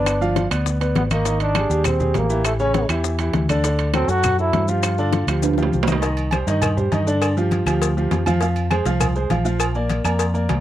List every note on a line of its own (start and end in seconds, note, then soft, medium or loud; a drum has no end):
0.00 0.45 G1 medium
0.00 0.16 B3 medium
0.00 0.48 D4 medium
0.00 0.16 B4 medium
0.00 0.16 D5 medium
0.06 high bongo medium
0.06 high conga soft
0.06 high timbale medium
0.06 claves medium
0.06 maracas medium
0.21 0.46 F3 medium
0.21 0.46 F4 medium
0.21 0.46 F5 medium
0.21 high bongo soft
0.21 high conga soft
0.21 maracas soft
0.36 high bongo medium
0.36 high conga medium
0.36 high timbale medium
0.36 maracas soft
0.51 0.93 D2 medium
0.51 0.75 B3 medium
0.51 0.76 B4 medium
0.51 0.76 D5 medium
0.51 high bongo soft
0.51 high conga soft
0.51 high timbale medium
0.51 claves medium
0.51 maracas medium
0.66 high bongo medium
0.66 high conga soft
0.66 maracas medium
0.81 1.05 B3 medium
0.81 1.05 B4 medium
0.81 1.06 D5 medium
0.81 high bongo soft
0.81 high conga soft
0.81 high timbale medium
0.81 maracas soft
0.95 1.65 G#1 medium
0.95 1.03 B3 medium
0.95 high bongo soft
0.95 low bongo medium
0.95 high conga medium
0.95 high timbale medium
0.95 low timbale medium
0.95 maracas soft
1.11 1.23 D#3 medium
1.11 1.39 A#3 medium
1.11 1.23 D#4 medium
1.11 1.23 D#5 medium
1.11 high conga medium
1.11 high timbale medium
1.11 claves medium
1.11 maracas medium
1.25 1.50 D#3 medium
1.25 1.50 D#4 medium
1.25 1.50 D#5 medium
1.25 high bongo medium
1.25 high conga soft
1.25 high timbale medium
1.25 maracas medium
1.40 1.83 D4 loud
1.40 high bongo soft
1.40 high conga soft
1.40 high timbale medium
1.40 maracas soft
1.55 1.67 G3 medium
1.55 1.68 G4 medium
1.55 1.68 G#4 medium
1.55 high bongo medium
1.55 high conga medium
1.55 high timbale loud
1.55 claves medium
1.55 maracas soft
1.70 2.12 D#2 loud
1.70 1.95 G3 medium
1.70 1.95 G4 medium
1.70 1.95 G#4 medium
1.70 high bongo soft
1.70 high conga soft
1.70 maracas medium
1.84 2.13 C4 medium
1.84 high bongo medium
1.84 high conga soft
1.84 low conga medium
1.84 high timbale medium
1.84 claves medium
1.84 maracas medium
1.99 2.24 G3 medium
1.99 2.24 G4 medium
1.99 2.25 G#4 medium
1.99 high bongo soft
1.99 high conga soft
1.99 low conga medium
1.99 maracas soft
2.14 2.84 A1 loud
2.14 2.44 A#3 medium
2.14 high bongo soft
2.14 low bongo medium
2.14 high conga medium
2.14 high timbale medium
2.14 low timbale medium
2.14 maracas soft
2.29 2.54 E3 medium
2.29 2.54 E4 medium
2.29 2.54 G4 medium
2.29 maracas medium
2.45 2.52 A3 medium
2.45 high bongo medium
2.45 high conga soft
2.45 high timbale medium
2.45 claves medium
2.45 maracas medium
2.59 2.84 C#3 medium
2.59 2.84 C#4 loud
2.59 2.88 C#4 medium
2.59 2.84 C#5 medium
2.59 high bongo soft
2.59 high conga soft
2.59 maracas soft
2.74 high bongo medium
2.74 high conga medium
2.74 high timbale medium
2.74 maracas soft
2.89 3.31 E2 loud
2.89 3.14 E3 medium
2.89 3.14 E4 medium
2.89 3.14 G4 medium
2.89 high bongo soft
2.89 high conga soft
2.89 high timbale loud
2.89 claves medium
2.89 maracas medium
3.04 high bongo medium
3.04 high conga soft
3.04 maracas medium
3.19 3.44 E3 medium
3.19 3.44 E4 medium
3.19 3.44 G4 medium
3.19 high bongo soft
3.19 high conga soft
3.19 high timbale medium
3.19 maracas soft
3.34 4.03 D2 loud
3.34 high bongo soft
3.34 low bongo medium
3.34 high conga medium
3.34 high timbale medium
3.34 maracas soft
3.49 3.62 D3 medium
3.49 3.62 D4 medium
3.49 3.62 D5 loud
3.49 high conga medium
3.49 high timbale medium
3.49 claves medium
3.49 maracas medium
3.64 3.89 D3 medium
3.64 3.89 D4 medium
3.64 3.89 D5 medium
3.64 high bongo medium
3.64 high conga soft
3.64 high timbale medium
3.64 maracas medium
3.79 high bongo soft
3.79 high conga soft
3.79 high timbale medium
3.79 maracas soft
3.94 4.06 F#3 medium
3.94 4.11 C4 loud
3.94 4.06 F#4 medium
3.94 4.07 A4 medium
3.94 high bongo medium
3.94 high conga medium
3.94 high timbale medium
3.94 claves medium
3.94 maracas soft
4.08 4.50 F#2 medium
4.08 4.33 F#3 medium
4.08 4.39 F#4 loud
4.08 4.34 F#4 medium
4.08 4.34 A4 medium
4.08 high bongo soft
4.08 high conga soft
4.08 maracas medium
4.23 high bongo medium
4.23 high conga soft
4.23 low conga medium
4.23 high timbale medium
4.23 claves medium
4.23 maracas medium
4.39 4.63 F#3 medium
4.39 4.70 E4 loud
4.39 4.63 F#4 medium
4.39 4.64 A4 medium
4.39 high bongo soft
4.39 high conga soft
4.39 maracas soft
4.53 5.22 G2 medium
4.53 high bongo soft
4.53 low bongo medium
4.53 high conga medium
4.53 high timbale medium
4.53 low timbale medium
4.53 maracas soft
4.68 4.93 F3 medium
4.68 4.93 F4 medium
4.68 5.28 F4 medium
4.68 4.93 G4 medium
4.68 maracas medium
4.83 high bongo medium
4.83 high conga soft
4.83 high timbale medium
4.83 claves medium
4.83 maracas medium
4.98 5.23 D3 medium
4.98 5.23 D4 loud
4.98 5.23 D5 medium
4.98 high bongo soft
4.98 high conga soft
4.98 maracas soft
5.13 high bongo medium
5.13 high conga medium
5.13 high timbale medium
5.13 maracas soft
5.27 5.69 D2 medium
5.27 5.52 F3 medium
5.27 5.53 F4 medium
5.27 5.53 G4 medium
5.27 high bongo soft
5.27 high conga soft
5.27 high timbale loud
5.27 claves medium
5.27 maracas medium
5.42 high bongo medium
5.42 high timbale medium
5.42 maracas medium
5.53 high timbale medium
5.58 5.82 F3 medium
5.58 5.82 F4 medium
5.58 5.83 G4 medium
5.58 high bongo medium
5.58 high conga soft
5.58 maracas soft
5.63 low timbale medium
5.72 6.42 C2 medium
5.72 high conga medium
5.72 maracas soft
5.83 low timbale loud
5.87 6.00 D#3 medium
5.87 6.00 D#4 medium
5.87 6.00 D#5 medium
5.87 low bongo medium
5.87 high conga medium
5.87 claves medium
5.87 maracas medium
5.92 low timbale loud
6.02 6.27 D#3 medium
6.02 6.27 D#4 medium
6.02 6.27 D#5 medium
6.02 cowbell loud
6.02 high conga soft
6.02 low agogo medium
6.02 maracas medium
6.17 high conga soft
6.17 low agogo medium
6.17 maracas soft
6.31 6.45 G3 medium
6.31 6.45 G4 medium
6.31 6.45 C5 medium
6.31 cowbell medium
6.31 high conga medium
6.31 low agogo loud
6.31 claves medium
6.31 maracas soft
6.47 6.89 G2 medium
6.47 6.72 D#3 medium
6.47 6.72 D#4 medium
6.47 6.72 D#5 medium
6.47 cowbell medium
6.47 high conga soft
6.47 maracas medium
6.62 cowbell loud
6.62 high conga soft
6.62 low conga medium
6.62 low agogo loud
6.62 claves medium
6.62 maracas medium
6.77 6.89 G3 medium
6.77 6.89 G4 medium
6.77 6.89 C5 medium
6.77 high conga soft
6.77 low conga medium
6.77 maracas soft
6.92 7.61 G2 loud
6.92 7.04 D#3 medium
6.92 7.04 D#4 medium
6.92 7.05 D#5 medium
6.92 cowbell medium
6.92 high conga medium
6.92 low agogo medium
6.92 maracas soft
7.07 7.31 D3 medium
7.07 7.32 D4 medium
7.07 7.32 D5 medium
7.07 maracas medium
7.22 cowbell loud
7.22 high conga soft
7.22 low agogo loud
7.22 claves medium
7.22 maracas loud
7.37 7.61 F3 medium
7.37 7.62 F4 medium
7.37 7.62 G4 medium
7.37 high conga soft
7.37 maracas soft
7.51 cowbell medium
7.51 high conga medium
7.51 low agogo medium
7.51 maracas soft
7.66 8.08 D2 loud
7.66 7.91 F3 medium
7.66 7.92 F4 medium
7.66 7.92 G4 medium
7.66 cowbell medium
7.66 high conga soft
7.66 low agogo loud
7.66 claves medium
7.66 maracas medium
7.82 cowbell loud
7.82 high conga soft
7.82 low agogo medium
7.82 maracas medium
7.96 8.21 F3 medium
7.96 8.21 F4 medium
7.96 8.22 G4 medium
7.96 high conga soft
7.96 maracas soft
8.11 8.80 F2 loud
8.11 cowbell medium
8.11 high conga medium
8.11 low timbale medium
8.11 low agogo medium
8.11 maracas soft
8.26 8.39 F3 loud
8.26 8.39 F4 loud
8.26 8.39 F5 medium
8.26 high conga medium
8.26 low agogo loud
8.26 claves medium
8.26 maracas medium
8.41 8.66 F3 medium
8.41 8.66 F4 medium
8.41 8.66 F5 medium
8.41 cowbell loud
8.41 low agogo medium
8.41 maracas medium
8.56 high conga soft
8.56 low agogo medium
8.56 maracas soft
8.71 8.83 G#3 medium
8.71 8.84 G#4 medium
8.71 8.84 C5 medium
8.71 cowbell medium
8.71 high conga medium
8.71 low agogo loud
8.71 claves medium
8.71 maracas soft
8.85 9.27 C2 medium
8.85 9.10 F3 medium
8.85 9.11 F4 medium
8.85 9.11 F5 loud
8.85 cowbell medium
8.85 high conga soft
8.85 maracas medium
9.01 cowbell loud
9.01 high conga soft
9.01 low conga medium
9.01 low agogo loud
9.01 claves medium
9.01 maracas medium
9.15 9.28 G#3 medium
9.15 9.28 G#4 medium
9.15 9.28 C5 medium
9.15 high conga soft
9.15 maracas soft
9.30 9.99 A#1 medium
9.30 9.43 F3 medium
9.30 9.43 F4 medium
9.30 9.43 F5 medium
9.30 cowbell medium
9.30 high conga medium
9.30 low agogo medium
9.30 maracas soft
9.45 9.70 F3 medium
9.45 9.70 F4 medium
9.45 9.70 F5 medium
9.45 maracas medium
9.60 cowbell loud
9.60 high conga soft
9.60 low agogo loud
9.60 claves medium
9.60 maracas medium
9.75 10.00 A#3 medium
9.75 10.00 A#4 medium
9.75 10.00 D5 medium
9.75 high conga soft
9.75 maracas soft
9.89 cowbell medium
9.89 high conga medium
9.89 low agogo medium
9.89 maracas soft
10.04 10.46 F2 medium
10.04 10.29 A#3 medium
10.04 10.29 A#4 medium
10.04 10.29 D5 medium
10.04 cowbell medium
10.04 high conga soft
10.04 low agogo loud
10.04 claves medium
10.04 maracas medium
10.19 cowbell loud
10.19 high conga soft
10.19 low agogo medium
10.19 maracas medium
10.34 10.59 A#3 medium
10.34 10.59 A#4 medium
10.34 10.59 D5 medium
10.34 high conga soft
10.34 maracas soft
10.49 10.60 C2 medium
10.49 cowbell medium
10.49 high conga medium
10.49 low timbale medium
10.49 low agogo medium
10.49 maracas soft